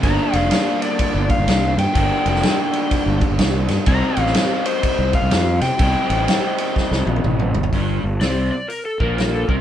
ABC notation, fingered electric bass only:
X:1
M:4/4
L:1/16
Q:"Swing" 1/4=125
K:Gm
V:1 name="Fingered electric bass" clef=bass
G,,, z F,,,2 z4 z G,,, z G,,, C,,2 G,, z | G,,, z F,,,2 z4 z G,,, z G,,, C,,2 G,, z | C,, z A,,,2 z4 z C,, z C,, F,,2 C, z | C,, z A,,,2 z4 z C,, B,,,2 A,,,2 G,,,2 |
G,,,2 G,,,2 C,,2 z4 B,,,4 C,,2 |]